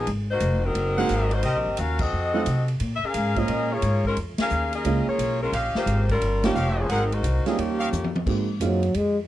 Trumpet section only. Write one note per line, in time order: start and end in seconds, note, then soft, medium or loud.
0.97 1.41 G#4 medium
0.97 1.41 A#4 medium
0.97 1.41 C5 medium
0.97 1.41 F#5 loud
1.43 1.58 G4 medium
1.43 1.58 A#4 medium
1.43 1.58 C5 medium
1.43 1.58 D#5 medium
2.34 2.42 F#4 medium
2.34 2.42 A4 medium
2.34 2.42 D#5 medium
2.34 2.42 F#5 medium
5.53 6.05 C#4 medium
5.53 6.05 G4 medium
5.53 6.05 D#5 medium
5.53 6.05 F5 medium
6.56 6.90 G4 medium
6.56 6.90 C#5 medium
6.56 6.90 D#5 medium
6.56 6.90 F5 medium
6.89 7.04 G#4 medium
6.89 7.04 A#4 medium
6.89 7.04 C5 medium
6.89 7.04 F#5 medium
7.79 7.88 G4 medium
7.79 7.88 C#5 medium
7.79 7.88 D#5 medium
7.79 7.88 F5 loud